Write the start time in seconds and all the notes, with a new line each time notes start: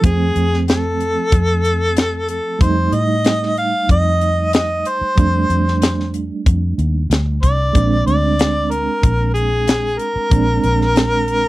0.01 F2 F3 A3 C4 G#4, kick, closed hi-hat
0.36 F2, closed hi-hat
0.54 snare
0.68 A4, snare, closed hi-hat
1.00 closed hi-hat
1.32 F2, kick, closed hi-hat
1.65 closed hi-hat
1.97 snare, closed hi-hat
2.28 A4, closed hi-hat
2.59 F2 G3 A3 D#4 C5, kick, closed hi-hat
2.92 A2 D#5, closed hi-hat
3.24 snare, closed hi-hat
3.43 snare
3.57 F5, closed hi-hat
3.89 F2 D#5, kick, closed hi-hat
4.21 closed hi-hat
4.53 snare, closed hi-hat
4.85 C5, closed hi-hat
5.01 muted fingered electric bass stroke
5.15 F2 G3 A3 D4, kick, closed hi-hat
5.50 F2, closed hi-hat
5.68 snare
5.82 snare, closed hi-hat
6.00 snare
6.14 closed hi-hat
6.46 F2, kick, closed hi-hat
6.78 D#2, closed hi-hat
7.10 D2, snare, closed hi-hat
7.42 C2 D5, kick, closed hi-hat
7.73 A#1 G#3 C4 D4, kick, closed hi-hat
8.06 D2 D5, closed hi-hat
8.39 snare, closed hi-hat
8.71 A#4, closed hi-hat
9.03 A#1, kick, closed hi-hat
9.34 G#4, closed hi-hat
9.68 snare, closed hi-hat
9.98 A#4, closed hi-hat
10.16 muted fingered electric bass stroke
10.30 A#1 G#3 C4 D4, kick, closed hi-hat
10.64 A#1, closed hi-hat
10.81 snare
10.96 snare, closed hi-hat
11.28 closed hi-hat